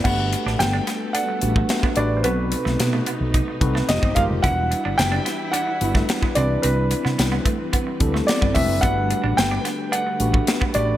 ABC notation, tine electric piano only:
X:1
M:4/4
L:1/8
Q:1/4=109
K:G
V:1 name="Tine electric piano"
[A,DFGB]3 z2 [A,DFGB] z [A,DFGB] | [C^DFAB]3 z2 [CDFAB] [_A,_EG] [A,E=FG_B] | [G,DEFB]3 z2 [G,DEFB] z [CDEGB]- | [CDEGB]2 z3 [CDEGA] z [CDEGB] |
[A,DFGB]3 z2 [A,DFGB] z [A,DFGB] |]